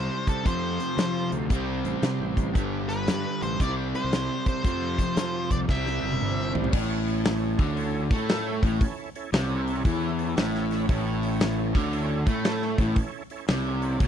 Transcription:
Already playing: overdriven electric guitar C3 G3 C4, tonewheel organ C4 E4 G4 C5, lead electric guitar C5
0.27 tonewheel organ C4 E4 G4 C5, lead electric guitar A4, kick, closed hi-hat
0.44 overdriven electric guitar F2 C3 F3, fingered electric bass F2, tonewheel organ C4 F4 A4 C5, lead electric guitar C5, kick, closed hi-hat
0.78 tonewheel organ C4 F4 A4 C5, closed hi-hat
0.96 fingered electric bass F3, tonewheel organ C4 F4 A4 C5, snare, closed hi-hat
1.30 fingered electric bass D2, tonewheel organ C4 F4 A4 C5, closed hi-hat
1.49 fingered electric bass C2, overdriven electric guitar C3 G3 C4, tonewheel organ C4 E4 G4 C5, kick, closed hi-hat
1.85 fingered electric bass A1, tonewheel organ C4 E4 G4 C5, closed hi-hat
2.00 fingered electric bass C3, tonewheel organ C4 E4 G4 C5 C6, snare, closed hi-hat
2.20 fingered electric bass A1
2.35 tonewheel organ C4 E4 G4 C5, kick, closed hi-hat
2.52 fingered electric bass G1, overdriven electric guitar G2 D3, tonewheel organ B3 D4 G4 B4, kick, closed hi-hat
2.57 overdriven electric guitar G3
2.89 tonewheel organ B3 D4 G4 B4, lead electric guitar B4, closed hi-hat
3.07 fingered electric bass G2, tonewheel organ B3 D4 G4 B4, snare, closed hi-hat
3.40 fingered electric bass A1, tonewheel organ B3 D4 G4 B4, lead electric guitar C5, closed hi-hat
3.59 fingered electric bass C2, overdriven electric guitar C3 G3 C4, tonewheel organ C4 E4 G4 C5, lead electric guitar D5, kick, closed hi-hat
3.93 tonewheel organ C4 E4 G4 C5, lead electric guitar C5, closed hi-hat
4.04 fingered electric bass C2
4.11 tonewheel organ C4 E4 G4 C5, snare, closed hi-hat
4.46 tonewheel organ C4 E4 G4 C5, lead electric guitar C5, kick, closed hi-hat
4.64 overdriven electric guitar F2 C3 F3, fingered electric bass F2, tonewheel organ C4 F4 A4 C5, kick, closed hi-hat
4.98 tonewheel organ C4 F4 A4 C5, kick, closed hi-hat
5.15 fingered electric bass F3, tonewheel organ C4 F4 A4 C5, snare, closed hi-hat
5.50 fingered electric bass C2, tonewheel organ C4 F4 A4 C5, lead electric guitar D5, kick, closed hi-hat
5.68 fingered electric bass C2, overdriven electric guitar C3 G3 C4, tonewheel organ C4 E4 G4 C5, lead electric guitar E5, kick, snare
5.86 snare
6.02 fingered electric bass F#1, tonewheel organ C4 E4 G4 C5
6.12 high tom
6.19 fingered electric bass G1, tonewheel organ C4 E4 G4 C5, mid tom
6.53 fingered electric bass A1, tonewheel organ C4 E4 G4 C5, floor tom
6.64 floor tom
6.71 fingered electric bass A1, overdriven electric guitar A2, tonewheel organ C#4 E4 A4 C#5, kick, crash
7.06 tonewheel organ C#4 E4 A4 C#5, open hi-hat
7.23 tonewheel organ C#4 E4 A4 C#5, snare, open hi-hat
7.57 fingered electric bass D2, overdriven electric guitar D3, tonewheel organ C#4 E4 A4 C#5, kick, open hi-hat
7.75 tonewheel organ C#4 E4 A4 C#5, open hi-hat
8.11 fingered electric bass A2, overdriven electric guitar A3, tonewheel organ C#4 E4 A4 C#5, kick, open hi-hat
8.28 tonewheel organ C#4 E4 A4 C#5, snare, open hi-hat
8.63 fingered electric bass A1, overdriven electric guitar A2, tonewheel organ C#4 E4 A4 C#5, kick, open hi-hat
8.81 tonewheel organ C#4 E4 A4 C#5, kick, open hi-hat
9.15 tonewheel organ C#4 E4 A4 C#5, open hi-hat
9.33 fingered electric bass C2, overdriven electric guitar C3, tonewheel organ C#4 E4 A4 C#5, snare, open hi-hat
9.67 tonewheel organ C#4 E4 A4 C#5, open hi-hat
9.84 fingered electric bass E2, overdriven electric guitar E3, tonewheel organ C#4 E4 A4 C#5, kick, open hi-hat
10.17 tonewheel organ C#4 E4 A4 C#5, open hi-hat
10.37 fingered electric bass A1, overdriven electric guitar A2, tonewheel organ C#4 E4 A4 C#5 E5, snare, open hi-hat
10.55 snare
10.71 tonewheel organ C#4 E4 A4 C#5 B5, snare, open hi-hat
10.88 fingered electric bass A1, overdriven electric guitar A2, tonewheel organ C#4 E4 A4 C#5, kick, open hi-hat
11.21 tonewheel organ C#4 E4 A4 C#5, open hi-hat
11.38 tonewheel organ C#4 E4 A4 C#5, snare, open hi-hat
11.72 fingered electric bass D2, overdriven electric guitar D3, tonewheel organ C#4 E4 A4 C#5, kick, open hi-hat
11.91 tonewheel organ C#4 E4 A4 C#5, open hi-hat
12.24 fingered electric bass A2, overdriven electric guitar A3, tonewheel organ C#4 E4 A4 C#5, kick, open hi-hat
12.41 tonewheel organ C#4 E4 A4 C#5, open hi-hat
12.45 snare
12.62 snare
12.77 fingered electric bass A1, overdriven electric guitar A2, tonewheel organ C#4 E4 A4 C#5, kick, open hi-hat
12.93 tonewheel organ C#4 E4 A4 C#5, kick, open hi-hat
13.30 tonewheel organ C#4 E4 A4 C#5, open hi-hat
13.47 fingered electric bass C2, overdriven electric guitar C3, tonewheel organ C#4 E4 A4 C#5, snare, open hi-hat
13.79 tonewheel organ C#4 E4 A4 C#5, open hi-hat
13.98 fingered electric bass C2, overdriven electric guitar C3, tonewheel organ C#4 E4 A4 C#5, kick, open hi-hat

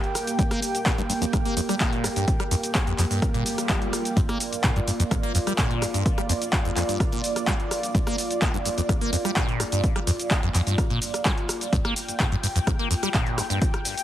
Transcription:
Already playing: analog synth pad A#3 G4 G5
0.04 closed hi-hat
0.15 cross-stick, open hi-hat, cabasa
0.27 closed hi-hat, cabasa
0.39 acid bass G2, kick, closed hi-hat, cabasa
0.51 acid bass A#3, cross-stick, closed hi-hat
0.62 open hi-hat, cabasa
0.75 closed hi-hat, cabasa
0.86 acid bass A#2, kick, cross-stick, clap, closed hi-hat, cabasa
0.98 acid bass G2, closed hi-hat
1.09 acid bass G2, open hi-hat, cabasa
1.22 acid bass F2, closed hi-hat, cabasa
1.33 acid bass G2, kick, cross-stick, closed hi-hat, cabasa
1.45 acid bass A#3, closed hi-hat
1.57 acid bass F2, open hi-hat, cabasa
1.69 acid bass G3, cross-stick, closed hi-hat, cabasa
1.80 acid bass A#2, kick, clap, closed hi-hat, cabasa
1.93 closed hi-hat
2.04 acid bass G2, cross-stick, open hi-hat, cabasa
2.16 acid bass G2, closed hi-hat, cabasa
2.28 kick, closed hi-hat, cabasa
2.40 acid bass G3, cross-stick, closed hi-hat
2.51 acid bass F2, open hi-hat, cabasa
2.63 closed hi-hat, cabasa
2.75 kick, cross-stick, clap, closed hi-hat, cabasa
2.87 acid bass F2, closed hi-hat
2.98 acid bass F2, clap, open hi-hat, cabasa
3.11 acid bass G2, open hi-hat, cabasa
3.22 analog synth pad F4, kick, cross-stick, closed hi-hat, swell, cabasa
3.34 acid bass A#2, closed hi-hat
3.46 open hi-hat, cabasa
3.58 cross-stick, closed hi-hat, cabasa
3.69 acid bass G3, kick, clap, closed hi-hat, cabasa
3.82 closed hi-hat
3.93 cross-stick, open hi-hat, cabasa
4.05 closed hi-hat, cabasa
4.17 acid bass G2, analog synth pad D5, kick, closed hi-hat, cabasa
4.29 acid bass A#3, cross-stick, closed hi-hat
4.40 open hi-hat, cabasa
4.53 closed hi-hat, cabasa
4.64 acid bass A#2, kick, cross-stick, clap, closed hi-hat, cabasa
4.76 acid bass G2, closed hi-hat
4.87 acid bass G2, open hi-hat, cabasa
5.00 acid bass F2, closed hi-hat, cabasa
5.11 acid bass G2, kick, cross-stick, closed hi-hat, cabasa
5.23 acid bass A#3, closed hi-hat
5.35 acid bass F2, open hi-hat, cabasa
5.47 acid bass G3, cross-stick, closed hi-hat, cabasa
5.58 acid bass A#2, kick, clap, closed hi-hat, cabasa
5.71 closed hi-hat
5.82 acid bass G2, cross-stick, open hi-hat, cabasa
5.94 acid bass G2, closed hi-hat, cabasa
6.06 kick, closed hi-hat, cabasa
6.18 acid bass G3, cross-stick, closed hi-hat
6.29 acid bass F2, open hi-hat, cabasa
6.42 closed hi-hat, cabasa
6.53 kick, cross-stick, clap, closed hi-hat, cabasa
6.65 acid bass F2, closed hi-hat
6.76 acid bass F2, clap, open hi-hat, cabasa
6.89 acid bass G2, closed hi-hat, cabasa
7.00 kick, cross-stick, closed hi-hat, cabasa
7.12 acid bass A#2, closed hi-hat
7.24 open hi-hat, cabasa
7.36 cross-stick, closed hi-hat, cabasa
7.47 acid bass G3, kick, clap, closed hi-hat, cabasa
7.60 closed hi-hat
7.71 cross-stick, open hi-hat, cabasa
7.83 closed hi-hat, cabasa
7.95 acid bass G2, kick, closed hi-hat, cabasa
8.07 acid bass A#3, cross-stick, closed hi-hat
8.18 open hi-hat, cabasa
8.31 closed hi-hat, cabasa
8.42 acid bass A#2, kick, cross-stick, clap, closed hi-hat, cabasa
8.54 acid bass G2, closed hi-hat
8.65 acid bass G2, open hi-hat, cabasa
8.78 acid bass F2, closed hi-hat, cabasa
8.89 acid bass G2, kick, cross-stick, closed hi-hat, cabasa
9.01 acid bass A#3, closed hi-hat
9.13 acid bass F2, open hi-hat, cabasa
9.25 acid bass G3, cross-stick, closed hi-hat, cabasa
9.36 acid bass A#2, kick, clap, closed hi-hat, cabasa
9.49 closed hi-hat
9.60 acid bass G2, cross-stick, open hi-hat, cabasa
9.72 acid bass G2, closed hi-hat, cabasa
9.84 kick, closed hi-hat, cabasa
9.96 acid bass G3, cross-stick, closed hi-hat
10.07 acid bass F2, open hi-hat, cabasa
10.19 closed hi-hat, cabasa
10.31 kick, cross-stick, clap, closed hi-hat, cabasa
10.43 acid bass F2, closed hi-hat
10.54 acid bass F2, clap, open hi-hat, cabasa
10.67 acid bass G2, closed hi-hat, cabasa
10.78 kick, cross-stick, closed hi-hat, cabasa
10.90 acid bass A#2, closed hi-hat
11.02 open hi-hat, cabasa
11.14 cross-stick, closed hi-hat, cabasa
11.25 acid bass G3, kick, clap, closed hi-hat, cabasa
11.38 closed hi-hat
11.49 cross-stick, open hi-hat, cabasa
11.61 closed hi-hat, cabasa
11.73 acid bass G2, analog synth pad G5, kick, closed hi-hat, cabasa
11.85 acid bass A#3, cross-stick, closed hi-hat
11.96 open hi-hat, cabasa
12.08 closed hi-hat, cabasa
12.20 acid bass A#2, kick, cross-stick, clap, closed hi-hat, cabasa
12.32 acid bass G2, closed hi-hat
12.43 acid bass G2, open hi-hat, cabasa
12.56 acid bass F2, closed hi-hat, cabasa
12.67 acid bass G2, kick, cross-stick, closed hi-hat, cabasa
12.79 acid bass A#3, closed hi-hat
12.91 acid bass F2, open hi-hat, cabasa
13.03 acid bass G3, cross-stick, closed hi-hat, cabasa
13.14 acid bass A#2, kick, clap, closed hi-hat, cabasa
13.27 closed hi-hat
13.38 acid bass G2, cross-stick, open hi-hat, cabasa
13.50 acid bass G2, closed hi-hat, cabasa
13.62 kick, closed hi-hat, cabasa
13.74 cross-stick, closed hi-hat
13.85 open hi-hat, cabasa
13.97 closed hi-hat, cabasa

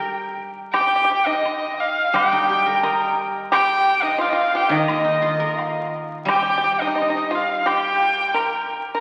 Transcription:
Already playing: guzheng G3 D#4 G4 A#4, pipa G4, erhu G5
0.72 pipa G4, dizi G5, erhu G5, high woodblock
0.81 pipa G4
0.87 pipa G4
0.96 pipa G4
1.04 pipa G4
1.11 pipa G4
1.26 pipa D#4, dizi D#5, erhu D#5
1.45 high woodblock
1.74 dizi G5
1.80 erhu F5, dizi F5
2.13 guzheng G3, pipa G4, dizi G5, erhu G5, high woodblock
2.19 dizi F5
2.26 dizi G5
2.32 guzheng D#4
2.49 guzheng G4
2.66 guzheng A#4
2.83 pipa A#4, guzheng D#5, dizi A#5, high woodblock
3.52 pipa G4, dizi G5, erhu G5, high woodblock
4.02 pipa D#4, dizi D#5, erhu D#5
4.18 pipa F4, dizi F5, erhu F5, high woodblock
4.29 erhu D#5, dizi F5
4.33 pipa F4, erhu F5
4.52 pipa G4, dizi G5
4.57 erhu G5
4.69 guzheng D#3, pipa D#4, dizi D#5
4.75 erhu D#5
4.88 guzheng A#3, high woodblock
5.05 guzheng D#4
5.22 guzheng F4
5.40 guzheng A#4
5.56 dizi F5, high woodblock, low woodblock
6.25 guzheng G3, pipa G4, dizi G5, high woodblock
6.30 erhu G5
6.36 pipa G4
6.42 pipa G4
6.50 pipa G4
6.58 pipa G4
6.64 pipa G4
6.78 pipa D#4, dizi D#5, erhu D#5
6.87 pipa D#4
6.95 pipa D#4, high woodblock
7.02 pipa D#4
7.10 pipa D#4
7.17 pipa D#4
7.31 pipa F4, dizi F5, erhu F5
7.65 pipa G4, dizi G5, erhu G5, high woodblock
8.34 pipa A#4, high woodblock
8.95 pipa A#4, erhu A#5

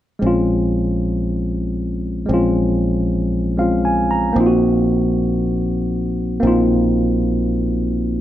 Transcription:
0.19 fingered electric bass A#1, tine electric piano G#3 C4
0.24 tine electric piano C#4 F4
2.26 fingered electric bass A#1, tine electric piano G#3 C4
2.31 tine electric piano C#4 F4
3.57 tine electric piano G#3 C4 C#4 F4 F5
3.85 tine electric piano G#5
4.11 tine electric piano A#5
4.33 fingered electric bass A#1, tine electric piano A#3 C4
4.38 tine electric piano D#4 F4
4.47 tine electric piano F#4
6.40 fingered electric bass A#1, tine electric piano A#3 C4
6.45 tine electric piano D#4 F4

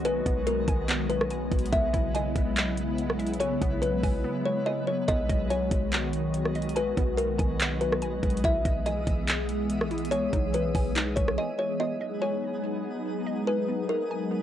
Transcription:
Already playing: 808-style bass B1, analog synth pad D#3 F#3 G#3 B3 F#4, synth texture G#3 B3 D#4, synth pluck D#5
0.05 kalimba B4, synth pluck G#5, closed hi-hat
0.26 808-style bass B1, synth pluck B3, kick, closed hi-hat
0.47 kalimba A#4, closed hi-hat
0.68 808-style bass B1, synth pluck G#5, kick, closed hi-hat
0.88 synth pluck B3, clap, closed hi-hat
1.10 kalimba B4, closed hi-hat
1.21 cross-stick
1.30 808-style bass A#1, synth pluck G#5, closed hi-hat
1.41 808-style bass B1
1.52 808-style bass B1, kick, closed hi-hat
1.59 closed hi-hat
1.66 closed hi-hat
1.72 808-style bass B1, analog synth pad C#3 E4, synth pluck B3, synth texture E4, kalimba E5, kick, closed hi-hat
1.93 808-style bass B1, synth pluck E4, kick, closed hi-hat
2.14 kalimba D#5, synth pluck G#5, closed hi-hat
2.36 808-style bass B1, kick, closed hi-hat
2.57 clap, closed hi-hat
2.77 closed hi-hat
2.98 closed hi-hat
3.10 cross-stick
3.19 synth pluck E5, closed hi-hat
3.27 closed hi-hat
3.34 closed hi-hat
3.40 kalimba C#5, synth pluck G#5, closed hi-hat
3.61 808-style bass B1, synth pluck B3, kick, closed hi-hat
3.82 kalimba B4, closed hi-hat
4.03 808-style bass B1, synth pluck G#5, kick, open hi-hat
4.24 synth pluck B3
4.46 kalimba C#5
4.66 kalimba D#5, synth pluck G#5
4.87 kalimba C#5
5.08 808-style bass B1, analog synth pad D#3 F#4, synth pluck B3, synth texture D#4, kalimba D#5, kick, closed hi-hat
5.29 808-style bass B1, synth pluck D#5, kick, closed hi-hat
5.50 kalimba C#5, synth pluck G#5, closed hi-hat
5.71 808-style bass B1, kick, closed hi-hat
5.92 clap, closed hi-hat
6.13 closed hi-hat
6.34 closed hi-hat
6.45 cross-stick
6.55 synth pluck D#5, closed hi-hat
6.62 closed hi-hat
6.69 closed hi-hat
6.76 kalimba B4, synth pluck G#5, closed hi-hat
6.97 808-style bass B1, synth pluck B3, kick, closed hi-hat
7.17 kalimba A#4, closed hi-hat
7.39 808-style bass B1, synth pluck G#5, kick, closed hi-hat
7.60 synth pluck B3, clap, closed hi-hat
7.81 kalimba B4, closed hi-hat
7.92 cross-stick
8.02 808-style bass A#1, synth pluck G#5, closed hi-hat
8.13 808-style bass B1
8.23 808-style bass B1, kick, closed hi-hat
8.30 closed hi-hat
8.37 closed hi-hat
8.44 808-style bass B1, analog synth pad E3 G#3 B3 G#4, synth texture G#3 E4 D#6, synth pluck E4, kalimba E5, kick, closed hi-hat
8.65 808-style bass B1, synth pluck D#5, kick, closed hi-hat
8.86 kalimba D#5, synth pluck G#5, closed hi-hat
9.07 808-style bass B1, kick, closed hi-hat
9.28 clap, closed hi-hat
9.49 closed hi-hat
9.70 closed hi-hat
9.81 cross-stick
9.91 synth pluck E4, closed hi-hat
9.98 closed hi-hat
10.05 closed hi-hat
10.11 kalimba C#5, synth pluck G#5, closed hi-hat
10.33 808-style bass B1, synth pluck D#4, kick, closed hi-hat
10.54 kalimba B4, closed hi-hat
10.75 808-style bass B1, synth pluck G#5, kick, open hi-hat
10.96 synth pluck D#4, clap, closed hi-hat
11.16 808-style bass B1, kalimba C#5, kick, closed hi-hat
11.28 cross-stick
11.38 kalimba D#5, synth pluck G#5
11.59 kalimba C#5
11.80 analog synth pad F#3 G#3 B3 D#4 G#4, synth pluck B3, synth texture B3 G#4 D#5, kalimba D#5
12.01 synth pluck D#5
12.22 kalimba C#5, synth pluck G#5
13.26 synth pluck D#5
13.47 kalimba B4, synth pluck G#5
13.68 synth pluck B3
13.89 kalimba A#4
14.11 synth pluck G#5
14.31 synth pluck B3

